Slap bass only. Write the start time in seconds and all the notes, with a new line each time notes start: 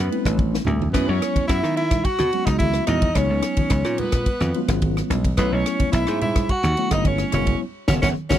0.26 A1
0.66 D2
0.94 F#2
1.09 F#2
1.36 muted slap bass stroke
1.49 F#2
1.63 D#3
2.19 B2
2.47 C#2
2.88 E2
3.15 C#2
3.30 C#2
3.57 muted slap bass stroke
3.71 C#2
3.85 A#2
4.41 F2
4.69 G#1
5.10 B1
5.38 B1
5.52 B1
5.94 B1
6.08 G#2
6.64 D#2
6.91 G1
7.33 F#1
7.89 F#1
8.03 F#1
8.31 F#1